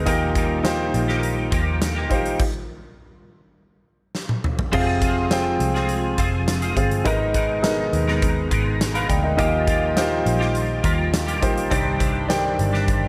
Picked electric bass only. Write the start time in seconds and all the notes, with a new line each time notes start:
0.07 D#2
0.94 A#1
1.52 D#2
2.11 A#1
4.73 F1
5.60 C2
6.18 F1
6.76 G1
7.05 G#1
7.93 D#2
8.51 G#1
9.10 D2
9.38 D#2
10.26 A#1
10.84 D#2
11.42 A#1
11.71 C2
12.59 G1